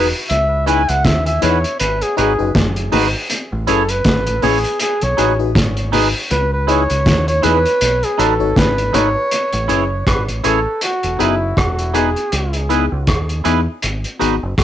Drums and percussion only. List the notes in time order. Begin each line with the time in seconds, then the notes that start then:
0.29 closed hi-hat
0.67 closed hi-hat
0.89 closed hi-hat
1.05 kick, snare, closed hi-hat
1.26 closed hi-hat
1.42 closed hi-hat
1.64 closed hi-hat
1.80 closed hi-hat
2.01 closed hi-hat
2.18 closed hi-hat
2.55 kick, snare, closed hi-hat
2.76 closed hi-hat
2.92 open hi-hat
3.30 closed hi-hat
3.68 closed hi-hat
3.89 closed hi-hat
4.05 kick, snare, closed hi-hat
4.27 closed hi-hat
4.42 open hi-hat
4.64 closed hi-hat
4.80 closed hi-hat
5.02 closed hi-hat
5.18 closed hi-hat
5.55 kick, snare, closed hi-hat
5.77 closed hi-hat
5.93 open hi-hat
6.31 closed hi-hat
6.68 closed hi-hat
6.90 closed hi-hat
7.06 kick, snare, closed hi-hat
7.28 closed hi-hat
7.43 closed hi-hat
7.66 closed hi-hat
7.81 closed hi-hat
8.03 closed hi-hat
8.19 closed hi-hat
8.56 kick, snare, closed hi-hat
8.78 closed hi-hat
8.94 closed hi-hat
9.31 closed hi-hat
9.52 closed hi-hat
9.69 closed hi-hat
10.07 kick, cross-stick, closed hi-hat
10.29 closed hi-hat
10.44 closed hi-hat
10.81 closed hi-hat
11.03 closed hi-hat
11.20 closed hi-hat
11.57 kick, cross-stick, closed hi-hat
11.79 closed hi-hat
11.95 closed hi-hat
12.16 closed hi-hat
12.32 closed hi-hat
12.53 closed hi-hat
12.70 closed hi-hat
13.07 kick, cross-stick, closed hi-hat
13.29 closed hi-hat
13.45 closed hi-hat
13.82 closed hi-hat
14.04 closed hi-hat
14.21 closed hi-hat
14.58 kick, cross-stick, closed hi-hat